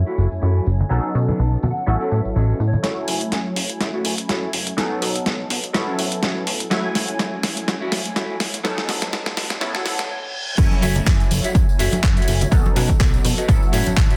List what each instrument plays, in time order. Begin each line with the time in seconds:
Already playing: analog polysynth F#3 A3 C#4 E4 G#5
0.06 clean electric guitar E4 F#4 A4, tambourine
0.18 analog synth bass F#1, tambourine
0.32 tambourine
0.41 analog synth bass F#2, clean electric guitar E4 F#4 A4, tambourine
0.55 tambourine
0.66 analog synth bass F#1, tambourine
0.80 tambourine, low conga
0.89 analog synth bass B1, analog polysynth F#3 B3 C#4 D#4 A4, clean electric guitar B3 D#4 A4, tambourine
1.04 tambourine
1.15 analog synth bass B2, tambourine
1.28 clean electric guitar B3 D#4 A4, tambourine, high conga, low conga
1.39 analog synth bass B1, tambourine
1.53 tambourine
1.63 analog synth bass B2, clean electric guitar A5, tambourine, high conga, low conga
1.71 clean electric guitar F#5
1.76 tambourine
1.86 analog synth bass A1, analog polysynth F#3 B3 C#4 E4 A4, clean electric guitar F#5, tambourine
2.00 clean electric guitar C#4 F#4 A4, tambourine
2.11 analog synth bass A2, tambourine
2.19 clean electric guitar E5
2.25 analog synth bass A1, tambourine
2.35 analog synth bass A1, clean electric guitar C#4 F#4 A4 D#5, tambourine
2.50 tambourine
2.60 analog synth bass A2, tambourine
2.68 clean electric guitar C#5
2.73 tambourine, high conga, low conga
2.83 analog synth bass F#2, analog polysynth F#3 A3 C#4 E4 G#5, clean electric guitar E4 F#4 A4, snare, closed hi-hat
3.08 analog synth bass F#1, open hi-hat
3.21 closed hi-hat
3.32 analog synth bass F#2, snare, closed hi-hat
3.56 analog synth bass F#1, muted clean electric guitar stroke, open hi-hat
3.69 muted clean electric guitar stroke, closed hi-hat
3.81 analog synth bass F#2, snare, closed hi-hat
3.94 clean electric guitar E4 F#4 A4
4.05 analog synth bass F#1, open hi-hat
4.18 analog synth bass F#2, closed hi-hat
4.28 analog synth bass F#2, clean electric guitar E4 F#4 A4, snare, closed hi-hat
4.53 analog synth bass F#1, open hi-hat
4.66 muted clean electric guitar stroke, closed hi-hat
4.77 analog synth bass B1, analog polysynth F#3 B3 C#4 D#4 A4, clean electric guitar B3 D#4 A4, snare, closed hi-hat
5.02 analog synth bass B2, open hi-hat
5.16 closed hi-hat
5.26 analog synth bass B1, snare, closed hi-hat
5.49 analog synth bass B2, muted clean electric guitar stroke, open hi-hat
5.63 muted clean electric guitar stroke, closed hi-hat
5.73 analog synth bass A1, analog polysynth F#3 B3 C#4 E4 A4, snare, closed hi-hat
5.87 clean electric guitar C#4 F#4 A4
5.99 analog synth bass A2, open hi-hat
6.12 closed hi-hat
6.22 analog synth bass A1, clean electric guitar C#4 F#4 A4, snare, closed hi-hat
6.47 analog synth bass A2, open hi-hat
6.59 muted clean electric guitar stroke, closed hi-hat
6.70 analog synth bass F#2, analog polysynth F#3 A3 C#4 E4 G#5, clean electric guitar E4 F#4 A4, snare, closed hi-hat
6.95 analog synth bass F#1, snare, open hi-hat
7.08 closed hi-hat
7.19 analog synth bass F#2, snare, closed hi-hat
7.43 analog synth bass F#1, muted clean electric guitar stroke, snare, open hi-hat
7.56 muted clean electric guitar stroke, closed hi-hat
7.68 analog synth bass F#2, snare, closed hi-hat
7.81 clean electric guitar E4 F#4 A4
7.92 analog synth bass F#1, snare, open hi-hat
8.06 closed hi-hat
8.15 analog synth bass F#2, clean electric guitar E4 F#4 A4, snare, closed hi-hat
8.40 analog synth bass F#1, snare, open hi-hat
8.53 muted clean electric guitar stroke, closed hi-hat
8.63 analog synth bass B1, analog polysynth F#3 B3 C#4 D#4 A4, clean electric guitar D#4 A4 B4, snare, closed hi-hat
8.78 snare
8.89 analog synth bass B2, snare, open hi-hat
9.02 snare, closed hi-hat
9.13 analog synth bass B1, snare, closed hi-hat
9.26 snare
9.36 analog synth bass B2, muted clean electric guitar stroke, snare, open hi-hat
9.50 snare, closed hi-hat
9.60 analog synth bass A1, analog polysynth F#3 B3 C#4 E4 A4, snare, closed hi-hat, reverse cymbal
9.74 clean electric guitar F#4 A4 C#5, snare
9.85 analog synth bass A2, clean electric guitar F#5, snare, open hi-hat
9.99 snare, closed hi-hat
10.10 clean electric guitar C#5
10.57 analog synth bass F#2, analog polysynth F#3 A3 C#4 E4 G#5, kick, closed hi-hat, crash, tambourine
10.71 tambourine, high conga
10.82 analog synth bass F#1, clean electric guitar F#4 A4 C#5 E5, open hi-hat, tambourine
10.96 closed hi-hat, tambourine, low conga
11.06 analog synth bass F#2, kick, clap, closed hi-hat, tambourine
11.20 closed hi-hat, tambourine
11.31 analog synth bass F#1, open hi-hat, tambourine, high conga
11.44 clean electric guitar F#4 A4 C#5 E5, closed hi-hat, tambourine
11.55 analog synth bass F#2, kick, closed hi-hat, tambourine
11.69 tambourine
11.79 analog synth bass F#1, clean electric guitar F#4 A4 C#5 E5, open hi-hat, tambourine
11.92 closed hi-hat, tambourine, high conga
12.03 analog synth bass F#2, kick, clap, closed hi-hat, tambourine
12.16 clean electric guitar F#4 A4 C#5 E5, closed hi-hat, tambourine
12.22 closed hi-hat
12.28 analog synth bass F#1, open hi-hat, tambourine
12.41 closed hi-hat, tambourine, low conga
12.51 analog synth bass B1, analog polysynth F#3 B3 C#4 D#4 A4, kick, closed hi-hat, tambourine
12.65 tambourine, high conga
12.75 analog synth bass B2, clean electric guitar F#4 A4 B4 D#5, open hi-hat, tambourine
12.89 kick, closed hi-hat, tambourine, low conga
13.00 analog synth bass B1, kick, clap, closed hi-hat, tambourine
13.14 closed hi-hat, tambourine
13.25 analog synth bass B2, open hi-hat, tambourine, high conga
13.37 clean electric guitar F#4 A4 B4 D#5, closed hi-hat, tambourine
13.48 analog synth bass A1, analog polysynth F#3 B3 C#4 E4 A4, kick, closed hi-hat, tambourine
13.63 tambourine
13.72 analog synth bass A2, clean electric guitar F#4 A4 C#5 E5, open hi-hat, tambourine
13.86 analog synth bass A1, closed hi-hat, tambourine, high conga
13.97 analog synth bass A1, kick, clap, closed hi-hat, tambourine
14.10 clean electric guitar F#4 A4 C#5 E5, closed hi-hat, tambourine